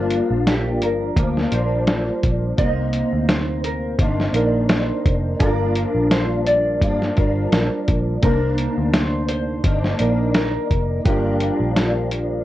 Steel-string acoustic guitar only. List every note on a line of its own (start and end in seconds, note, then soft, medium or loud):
0.00 1.15 G2 medium
0.00 1.16 F3 medium
0.00 1.18 A#3 medium
0.00 1.19 D4 medium
1.16 1.52 G2 medium
1.16 1.52 F3 medium
1.16 1.52 A#3 medium
1.16 1.51 D4 medium
1.52 2.59 F3 soft
1.52 2.60 A#3 soft
1.52 2.60 D4 soft
2.57 3.98 C3 medium
2.57 4.00 A#3 medium
3.99 4.34 C3 medium
3.99 4.35 D#3 medium
3.99 4.34 A#3 medium
3.99 4.33 D4 medium
4.34 5.41 D#3 soft
4.34 5.42 A#3 soft
4.34 5.44 D4 medium
5.40 6.81 G2 medium
5.40 6.82 F3 medium
5.40 6.83 A#3 medium
5.44 6.84 D4 medium
6.82 7.17 G2 medium
6.82 7.18 F3 medium
6.82 7.17 A#3 medium
6.82 7.15 D4 medium
7.16 8.24 F3 soft
7.16 8.25 A#3 soft
7.16 8.25 D4 soft
8.22 9.62 C3 medium
8.22 9.65 A#3 medium
8.27 9.66 D4 medium
9.64 9.99 C3 medium
9.64 10.00 D#3 medium
9.64 9.99 A#3 medium
9.64 9.98 D4 medium
9.99 11.06 D#3 soft
9.99 11.08 A#3 soft
9.99 11.09 D4 soft
11.05 12.44 G2 medium
11.05 12.44 F3 medium
11.05 12.44 A#3 medium
11.09 12.44 D4 medium